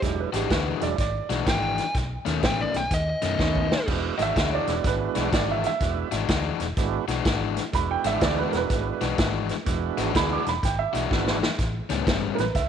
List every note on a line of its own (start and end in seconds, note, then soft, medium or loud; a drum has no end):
0.00 0.23 E1 medium
0.00 0.30 F#3 medium
0.00 0.30 G#3 medium
0.00 0.31 D4 medium
0.00 0.31 E4 medium
0.00 0.18 G4 medium
0.00 kick medium
0.00 snare soft
0.00 closed hi-hat medium
0.20 0.35 B4 medium
0.33 0.45 G#1 medium
0.33 0.49 E3 medium
0.33 0.49 G#3 medium
0.33 0.50 D4 medium
0.33 0.50 F#4 medium
0.33 0.50 G4 medium
0.33 snare soft
0.33 closed hi-hat medium
0.50 0.71 D2 medium
0.50 0.87 E3 medium
0.50 0.87 G#3 medium
0.50 0.87 D4 medium
0.50 0.87 F#4 medium
0.50 0.82 B4 medium
0.50 kick medium
0.50 snare loud
0.50 closed hi-hat medium
0.80 0.93 E1 medium
0.80 0.96 F#3 medium
0.80 0.96 G#3 medium
0.80 0.97 D4 medium
0.80 0.97 E4 medium
0.80 0.98 D5 medium
0.80 snare soft
0.80 closed hi-hat medium
0.96 1.19 G#1 medium
0.96 1.00 C#5 medium
0.96 kick medium
0.96 snare soft
0.96 closed hi-hat medium
1.01 1.38 D5 medium
1.30 1.41 B1 medium
1.30 1.45 E3 medium
1.30 1.46 G#3 medium
1.30 1.46 D4 medium
1.30 1.47 F#4 medium
1.30 snare soft
1.30 closed hi-hat medium
1.47 1.79 G#1 medium
1.47 1.83 E3 medium
1.47 1.83 G#3 medium
1.47 1.83 D4 medium
1.47 1.84 F#4 medium
1.47 1.95 G5 loud
1.47 kick medium
1.47 snare loud
1.47 closed hi-hat medium
1.78 snare soft
1.78 closed hi-hat medium
1.95 2.16 B1 medium
1.95 kick medium
1.95 snare soft
1.95 closed hi-hat medium
2.25 2.38 D#2 medium
2.25 2.41 B2 medium
2.25 2.42 D#3 medium
2.25 2.42 A3 medium
2.25 2.42 C#4 medium
2.25 snare soft
2.25 closed hi-hat medium
2.42 2.64 A1 medium
2.42 2.79 B2 medium
2.42 2.79 D#3 medium
2.42 2.80 A3 medium
2.42 2.80 C#4 medium
2.42 2.60 G5 medium
2.42 kick medium
2.42 snare loud
2.42 closed hi-hat medium
2.61 2.76 D5 medium
2.74 2.86 B1 medium
2.74 2.92 G5 medium
2.74 snare soft
2.74 closed hi-hat medium
2.91 3.12 D#2 medium
2.91 3.86 D#5 medium
2.91 kick medium
2.91 snare soft
2.91 closed hi-hat medium
3.22 3.34 F#2 medium
3.22 3.38 B2 medium
3.22 3.38 D#3 medium
3.22 3.39 A3 medium
3.22 3.39 C#4 medium
3.22 snare soft
3.22 closed hi-hat medium
3.38 3.72 D#2 medium
3.38 3.76 B2 medium
3.38 3.76 D#3 medium
3.38 3.67 A3 medium
3.38 3.76 A3 medium
3.38 3.68 B3 medium
3.38 3.68 C#4 medium
3.38 3.76 C#4 medium
3.38 3.68 D#4 medium
3.38 kick medium
3.38 snare medium
3.55 kick medium
3.72 snare medium
3.87 4.09 E1 medium
3.87 4.16 G#3 medium
3.87 4.16 B3 medium
3.87 4.16 D4 medium
3.87 4.16 E4 medium
3.87 4.16 F#4 medium
3.87 kick medium
3.87 snare soft
3.87 crash loud
4.18 4.31 G#1 medium
4.18 4.35 E3 medium
4.18 4.36 G#3 medium
4.18 4.36 D4 medium
4.18 4.36 F#4 medium
4.18 4.22 D#5 medium
4.18 snare soft
4.18 closed hi-hat medium
4.22 4.53 E5 loud
4.36 4.57 D2 medium
4.36 4.73 E3 medium
4.36 4.73 G#3 medium
4.36 4.73 D4 medium
4.36 4.73 F#4 medium
4.36 kick medium
4.36 snare loud
4.36 closed hi-hat medium
4.50 4.55 C#5 medium
4.55 4.85 D5 medium
4.67 4.79 E1 medium
4.67 5.29 G#3 medium
4.67 5.29 B3 medium
4.67 5.30 D4 medium
4.67 5.30 E4 medium
4.67 5.30 F#4 medium
4.67 snare soft
4.67 closed hi-hat medium
4.84 5.05 G#1 medium
4.84 5.33 B4 medium
4.84 kick medium
4.84 snare soft
4.84 closed hi-hat medium
5.15 5.27 B1 medium
5.15 5.31 E3 medium
5.15 5.31 G#3 medium
5.15 5.32 D4 medium
5.15 5.32 F#4 medium
5.15 snare soft
5.15 closed hi-hat medium
5.32 5.65 G#1 medium
5.32 5.68 E3 medium
5.32 5.69 G#3 medium
5.32 5.69 D4 medium
5.32 5.69 F#4 medium
5.32 5.49 D5 medium
5.32 kick medium
5.32 snare loud
5.32 closed hi-hat medium
5.51 5.65 E5 medium
5.64 6.13 E5 loud
5.64 snare soft
5.64 closed hi-hat medium
5.81 6.02 E1 medium
5.81 6.09 G#3 medium
5.81 6.09 B3 medium
5.81 6.09 D4 medium
5.81 6.10 E4 medium
5.81 6.10 F#4 medium
5.81 kick medium
5.81 snare soft
5.81 closed hi-hat medium
6.11 6.23 G#1 medium
6.11 6.27 E3 medium
6.11 6.28 G#3 medium
6.11 6.28 D4 medium
6.11 6.28 F#4 medium
6.11 snare soft
6.11 closed hi-hat medium
6.28 6.50 D2 medium
6.28 6.65 E3 medium
6.28 6.65 G#3 medium
6.28 6.65 D4 medium
6.28 6.65 F#4 medium
6.28 kick medium
6.28 snare loud
6.28 closed hi-hat medium
6.60 6.72 E1 medium
6.60 snare soft
6.60 closed hi-hat medium
6.77 6.98 G#1 medium
6.77 7.05 G#3 medium
6.77 7.06 B3 medium
6.77 7.06 D4 medium
6.77 7.06 E4 medium
6.77 7.06 F#4 medium
6.77 kick medium
6.77 snare soft
6.77 closed hi-hat medium
7.08 7.20 B1 medium
7.08 7.23 E3 medium
7.08 7.24 G#3 medium
7.08 7.24 D4 medium
7.08 7.25 F#4 loud
7.08 snare soft
7.08 closed hi-hat medium
7.25 7.58 G#1 medium
7.25 7.61 E3 medium
7.25 7.62 G#3 medium
7.25 7.62 D4 medium
7.25 7.62 F#4 medium
7.25 kick medium
7.25 snare loud
7.25 closed hi-hat medium
7.57 snare soft
7.57 closed hi-hat medium
7.72 7.95 E1 medium
7.72 9.07 G#3 medium
7.72 9.07 B3 medium
7.72 9.08 D4 medium
7.72 9.08 E4 medium
7.72 9.08 F#4 medium
7.72 7.90 B5 medium
7.72 kick medium
7.72 snare soft
7.72 closed hi-hat medium
7.91 8.06 G5 medium
8.04 8.16 G#1 medium
8.04 8.21 E3 medium
8.04 8.21 G#3 medium
8.04 8.21 D4 medium
8.04 8.22 F#4 medium
8.04 8.22 E5 medium
8.04 snare soft
8.04 closed hi-hat medium
8.21 8.43 D2 medium
8.21 8.58 E3 medium
8.21 8.58 G#3 medium
8.21 8.58 D4 medium
8.21 8.59 F#4 medium
8.21 8.38 D5 medium
8.21 kick medium
8.21 snare loud
8.21 closed hi-hat medium
8.39 8.54 B4 medium
8.52 8.64 E1 medium
8.52 8.56 A#4 medium
8.52 snare soft
8.52 closed hi-hat medium
8.57 9.49 B4 medium
8.70 8.91 G#1 medium
8.70 kick medium
8.70 snare soft
8.70 closed hi-hat medium
9.01 9.13 B1 medium
9.01 9.17 E3 medium
9.01 9.17 G#3 medium
9.01 9.18 D4 medium
9.01 9.18 F#4 medium
9.01 snare soft
9.01 closed hi-hat medium
9.18 9.51 G#1 medium
9.18 9.54 E3 medium
9.18 9.54 G#3 medium
9.18 9.55 D4 medium
9.18 9.55 F#4 medium
9.18 kick medium
9.18 snare loud
9.18 closed hi-hat medium
9.49 snare soft
9.49 closed hi-hat medium
9.65 9.88 E1 medium
9.65 10.12 G#3 medium
9.65 10.12 B3 medium
9.65 10.13 D4 medium
9.65 10.13 E4 medium
9.65 10.13 F#4 medium
9.65 kick medium
9.65 snare soft
9.65 closed hi-hat medium
9.98 10.09 G#1 medium
9.98 10.14 E3 medium
9.98 10.14 G#3 medium
9.98 10.15 D4 medium
9.98 10.15 F#4 medium
9.98 snare soft
9.98 closed hi-hat medium
10.14 10.36 D2 medium
10.14 10.51 E3 medium
10.14 10.42 G#3 medium
10.14 10.51 G#3 medium
10.14 10.42 B3 medium
10.14 10.43 D4 medium
10.14 10.51 D4 medium
10.14 10.43 E4 medium
10.14 10.52 F#4 medium
10.14 10.43 G#4 medium
10.14 10.31 B5 medium
10.14 kick medium
10.14 snare medium
10.14 closed hi-hat medium
10.33 10.47 D6 medium
10.46 10.58 E1 medium
10.46 10.63 B5 medium
10.46 snare soft
10.46 closed hi-hat medium
10.63 10.84 G#1 medium
10.63 10.79 G5 medium
10.63 kick medium
10.63 snare soft
10.63 closed hi-hat medium
10.79 11.25 E5 medium
10.93 11.05 B1 medium
10.93 11.10 E3 medium
10.93 11.10 G#3 medium
10.93 11.11 D4 medium
10.93 11.10 F#4 medium
10.93 snare soft
10.93 closed hi-hat medium
11.10 11.43 G#1 medium
11.10 11.47 E3 medium
11.10 11.38 G#3 medium
11.10 11.47 G#3 medium
11.10 11.39 B3 medium
11.10 11.39 D4 medium
11.10 11.47 D4 medium
11.10 11.39 E4 medium
11.10 11.39 F#4 medium
11.10 11.48 F#4 medium
11.10 kick medium
11.10 snare medium
11.27 snare medium
11.43 snare loud
11.59 11.80 A1 medium
11.59 kick medium
11.59 snare soft
11.59 closed hi-hat medium
11.90 12.02 C#2 medium
11.90 12.05 A2 medium
11.90 12.06 G3 medium
11.90 12.06 B3 medium
11.90 12.06 C#4 medium
11.90 snare soft
11.90 closed hi-hat medium
12.06 12.28 G1 medium
12.06 12.43 A2 medium
12.06 12.43 G3 medium
12.06 12.43 B3 medium
12.06 12.43 C#4 medium
12.06 kick medium
12.06 snare loud
12.06 closed hi-hat medium
12.35 12.50 A1 medium
12.35 12.39 A#4 medium
12.35 closed hi-hat medium
12.39 12.55 B4 medium
12.39 snare soft
12.55 12.69 C#2 medium
12.55 12.69 E5 medium
12.55 kick medium
12.55 snare soft
12.55 closed hi-hat medium